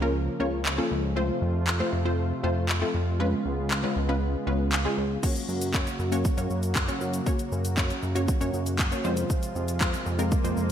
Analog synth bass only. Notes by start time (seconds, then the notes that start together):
Already playing: C#2
0.40 C#2
0.91 C#2
1.42 F2
1.93 F2
2.44 F2
2.94 F2
3.45 C#2
3.96 C#2
4.47 C#2
4.98 C#2
5.49 F#2
5.99 F#2
6.38 F#2
6.50 F#2
7.01 F#2
7.52 F#2
8.03 F#2
8.41 F#2
8.54 F#2
9.04 F2
9.55 F2
10.06 F2
10.44 F2
10.57 F2